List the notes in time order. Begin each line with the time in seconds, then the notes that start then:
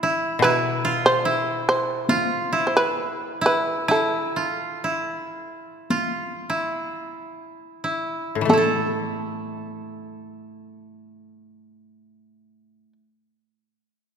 0.03 E4
0.39 B2 B4
0.44 E4, taiko rim
0.85 F4
1.06 C5
1.25 E4
1.69 C5
2.09 F4, taiko high
2.53 E4
2.67 C5
2.77 B4
3.41 E4
3.46 B4
3.88 E4 A4, taiko rim
4.36 F4
4.84 E4
5.90 F4, taiko high
6.50 E4, taiko rim
7.84 E4
8.35 A2
8.41 E3
8.45 A3, taiko high
8.49 A3 A4
8.53 E4
8.58 A4